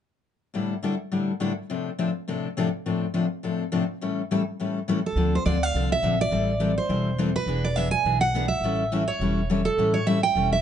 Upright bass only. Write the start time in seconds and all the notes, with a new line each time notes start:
5.16 D2
5.46 D2
5.74 C2
6.02 A#1
6.31 A1
6.89 E1
7.46 E1
8.04 B1
8.61 A1
9.20 E1
9.78 A1
10.35 E1